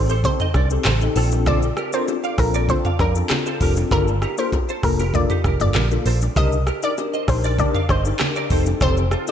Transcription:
Already playing: picked electric bass A1, tine electric piano C4 D#4 G4 A4
0.09 clean electric guitar A4 C5, shaker
0.24 tine electric piano C4 D#4 G4 A4, synth pluck C5, kick, low conga, shaker
0.40 clean electric guitar C5 D#5, mid tom, shaker
0.54 picked electric bass C2, clean electric guitar A#4 D5, kick, cross-stick, low bongo, shaker
0.70 tine electric piano C4 D#4 G4 A4, shaker
0.85 picked electric bass A1, clean electric guitar A4 C5, cross-stick, clap, high bongo, low conga, shaker
1.01 tine electric piano C4 D#4 G4 A4, shaker
1.16 picked electric bass A#1, tine electric piano C4 D4 F4 A4, clean electric guitar F4 A4, open hi-hat, shaker
1.31 low bongo, shaker
1.46 tine electric piano C4 D4 F4 A4, clean electric guitar A4 C5, synth pluck D5, kick, cross-stick, low conga, shaker
1.62 shaker
1.77 clean electric guitar G4 A#4, cross-stick, shaker
1.93 tine electric piano C4 D4 F4 A4, clean electric guitar A#4 D5, synth pluck C5, shaker
2.08 high bongo, shaker
2.24 clean electric guitar D5 F5, shaker
2.38 picked electric bass A#1, tine electric piano C4 D4 F4 A4, synth pluck A#4, kick, cross-stick, open hi-hat, shaker
2.54 clean electric guitar A#4 D5, shaker
2.69 tine electric piano C4 D4 F4 A4, synth pluck C5, kick, low conga, shaker
2.85 clean electric guitar D5 F5, mid tom, shaker
2.99 picked electric bass F2, synth pluck A#4, clean electric guitar A#4 D5, kick, cross-stick, low bongo, shaker
3.15 tine electric piano C4 D4 F4 A4, shaker
3.30 cross-stick, clap, high bongo, low conga, shaker
3.46 clean electric guitar A4 C5, shaker
3.60 picked electric bass F1, tine electric piano C4 D4 F4 A4, clean electric guitar G4 A#4, kick, open hi-hat, shaker
3.76 low bongo, shaker
3.91 picked electric bass G1, tine electric piano A#3 D4 F4 A4, clean electric guitar G4 A#4, synth pluck A#4, kick, cross-stick, low conga, shaker
4.08 shaker
4.22 clean electric guitar D#4 G4, cross-stick, high bongo, shaker
4.38 tine electric piano A#3 D4 F4 A4, clean electric guitar G4 A#4, synth pluck C5, shaker
4.52 kick, high bongo, shaker
4.69 clean electric guitar A4 C5, shaker
4.83 picked electric bass F1, tine electric piano A#3 D4 F4 A4, synth pluck A#4, kick, cross-stick, open hi-hat, shaker
4.99 clean electric guitar G4 A#4, high bongo, shaker
5.14 tine electric piano A#3 D4 F4 A4, synth pluck D5, kick, low conga, shaker
5.30 clean electric guitar D#4 G4, mid tom, shaker
5.44 picked electric bass F1, clean electric guitar G4 A#4, kick, cross-stick, low bongo, shaker
5.60 picked electric bass G1, tine electric piano A#3 D4 F4 A4, synth pluck D5, mid tom, shaker
5.75 picked electric bass A#1, clean electric guitar G4 A#4, cross-stick, clap, high bongo, low conga, shaker
5.91 tine electric piano A#3 D4 F4 A4, shaker
6.06 picked electric bass A#1, clean electric guitar A4 C5, open hi-hat, shaker
6.21 low bongo, shaker
6.36 picked electric bass C2, tine electric piano D4 D#4 G4 A#4, clean electric guitar G4 C5, synth pluck D#5, kick, cross-stick, low conga, shaker
6.52 shaker
6.67 clean electric guitar G4 A#4, cross-stick, shaker
6.83 tine electric piano D4 D#4 G4 A#4, clean electric guitar A#4 D5, synth pluck D5, shaker
6.98 high bongo, shaker
7.14 clean electric guitar C5 D#5, shaker
7.28 picked electric bass A#1, tine electric piano D4 D#4 G4 A#4, synth pluck C5, kick, cross-stick, open hi-hat, shaker
7.44 clean electric guitar A#4 D5, shaker
7.58 tine electric piano D4 D#4 G4 A#4, synth pluck D5, kick, low conga, shaker
7.75 clean electric guitar D5 F5, mid tom, shaker
7.89 picked electric bass G1, synth pluck C5, clean electric guitar C5 D#5, kick, cross-stick, low bongo, shaker
8.05 tine electric piano D4 D#4 G4 A#4, shaker
8.19 cross-stick, clap, high bongo, low conga, shaker
8.36 clean electric guitar A#4 D5, shaker
8.50 picked electric bass F1, tine electric piano C4 D#4 G4 A4, clean electric guitar A4 C5, kick, open hi-hat, shaker
8.66 low bongo, shaker
8.81 picked electric bass F1, tine electric piano C4 D#4 G4 A4, clean electric guitar A4 C5, synth pluck C5, kick, cross-stick, low conga, shaker
8.97 shaker
9.11 clean electric guitar F4 A4, cross-stick, shaker
9.27 tine electric piano C4 D#4 G4 A4, clean electric guitar C5, shaker

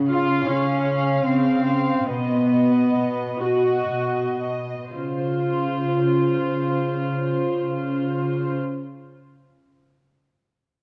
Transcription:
Already playing: cello section C#3
0.09 viola section F4, violin section F5
0.46 cello section C#3, viola section C#4
0.86 violin section F5
1.25 cello section C#3, viola section C4
1.66 violin section F5
2.06 cello section B2, viola section B3, violin section D#5
2.48 violin section D#5
2.95 cello section B2
3.41 viola section F#4, violin section D#5
3.89 cello section B2
4.40 violin section D#5
4.91 cello section C#3, viola section F4, violin section C5

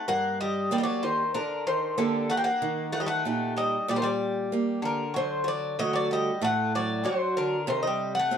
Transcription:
0.08 steel-string acoustic guitar G2, bouzouki A#3 F#5
0.41 bouzouki G3 D#5
0.71 bouzouki G3 D5, steel-string acoustic guitar A#3 D4 G4
0.78 bouzouki G3 D#5
0.84 bouzouki F#3 D5
1.03 bouzouki D#3 C5
1.34 bouzouki D3 A#4, steel-string acoustic guitar D4
1.67 bouzouki D#3 C5
1.98 bouzouki D3 A4, steel-string acoustic guitar A#3 D4 G4
2.30 bouzouki A3 F#5
2.37 bouzouki A#3 G5
2.44 bouzouki A#3 F#5
2.62 steel-string acoustic guitar D#3
2.92 bouzouki A3 F#5
3.00 bouzouki G3 D#5
3.06 bouzouki A3 F#5
3.25 steel-string acoustic guitar A#2 D#4 G4
3.56 bouzouki G3 D#5
3.88 steel-string acoustic guitar A#2, bouzouki G3 D5
3.96 bouzouki D#3 C5
4.02 bouzouki G3 D5
4.52 steel-string acoustic guitar A#3 G4
4.82 bouzouki D3 A#4
5.14 steel-string acoustic guitar D3, bouzouki F#3 C5
5.44 bouzouki F#3
5.48 bouzouki D5
5.79 steel-string acoustic guitar D3 A3 F#4, bouzouki F#3 D#5
5.93 bouzouki F#3 D5
6.11 bouzouki G3 D#5
6.42 steel-string acoustic guitar A2, bouzouki A3 F#5
6.75 bouzouki F#3 D5
7.04 steel-string acoustic guitar F#3 D4 F#4, bouzouki F#3 C5
7.37 bouzouki D3 A#4
7.67 steel-string acoustic guitar C3, bouzouki D#3 C5
7.83 bouzouki D#5
7.87 bouzouki G3
8.15 bouzouki F#5
8.19 bouzouki A3
8.31 steel-string acoustic guitar C4 D#4 G4

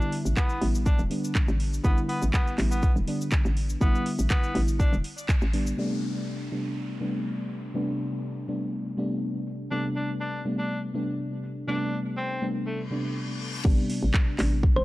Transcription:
Already playing: fm electric piano D3 G3 B3 E4, tenor saxophone D4
0.02 cabasa
0.12 open hi-hat
0.25 fm bass A1, cabasa
0.37 tenor saxophone B3, kick, clap, cabasa
0.49 cabasa
0.61 fm bass A1, fm electric piano D3 G3 B3 E4, open hi-hat
0.75 cabasa
0.86 tenor saxophone D4, kick, cabasa
0.99 fm bass E1, cabasa
1.10 fm electric piano D3 G3 B3 D4, open hi-hat
1.24 cabasa
1.35 kick, clap, cabasa
1.48 fm bass A1, cabasa
1.60 open hi-hat
1.74 cabasa
1.84 fm bass A1, fm electric piano D3 G3 B3 E4, tenor saxophone B3, kick, cabasa
1.97 cabasa
2.09 tenor saxophone B3, open hi-hat
2.22 fm bass A1, cabasa
2.34 tenor saxophone B3, kick, clap, cabasa
2.47 cabasa
2.58 fm bass A1, fm electric piano D3 G3 B3 E4, clap, open hi-hat
2.71 tenor saxophone B3, cabasa
2.83 kick, cabasa
2.96 fm bass E1, cabasa
3.07 fm electric piano D3 G3 B3 D4, open hi-hat
3.21 cabasa
3.31 kick, clap, cabasa
3.45 fm bass A1, cabasa
3.57 open hi-hat
3.69 cabasa
3.81 fm bass A1, fm electric piano D3 G3 B3 E4, tenor saxophone B3, kick, cabasa
3.95 cabasa
4.06 open hi-hat
4.19 fm bass A1, cabasa
4.30 tenor saxophone B3, kick, clap, cabasa
4.43 cabasa
4.55 fm bass A1, fm electric piano D3 G3 B3 E4, open hi-hat
4.68 cabasa
4.80 tenor saxophone D4, kick, cabasa
4.93 fm bass E1, cabasa
5.04 open hi-hat
5.18 cabasa
5.29 kick, clap, cabasa
5.42 fm bass A1, cabasa
5.53 fm electric piano D3 G3 B3 D4, open hi-hat
5.67 cabasa
5.77 fm electric piano C3 G3 A3 B3 D4, downlifter
6.03 open hi-hat
6.51 fm electric piano C3 G3 A3 B3 D4
7.00 fm electric piano C3 G3 A3 B3 D4
7.50 open hi-hat
7.74 fm electric piano C3 G3 A3 B3 D4
7.99 open hi-hat
8.48 fm electric piano C3 G3 A3 B3 D4, open hi-hat
8.97 fm electric piano C3 G3 A3 B3 D4, open hi-hat
9.47 open hi-hat
9.71 fm electric piano C3 G3 A3 B3 D4, tenor saxophone D4
9.96 tenor saxophone D4, open hi-hat
10.21 tenor saxophone D4
10.45 fm electric piano C3 G3 A3 B3 D4, open hi-hat
10.58 tenor saxophone D4
10.94 fm electric piano C3 G3 A3 B3 D4, open hi-hat
11.44 open hi-hat
11.67 fm electric piano C3 G3 A3 B3 D4, tenor saxophone D4
11.93 open hi-hat
12.17 tenor saxophone C4
12.42 fm electric piano C3 G3 A3 B3 D4, open hi-hat
12.66 tenor saxophone A3, reverse cymbal
12.90 fm electric piano C3 G3 A3 B3 D4, open hi-hat
13.40 open hi-hat
13.64 fm bass A1, fm electric piano C3 G3 B3 D4, kick, crash
13.90 open hi-hat
14.03 fm bass A1
14.14 kick, clap
14.38 fm bass A1, fm electric piano C3 G3 B3 D4, clap, open hi-hat
14.63 kick
14.76 fm bass E1, synth pluck C5

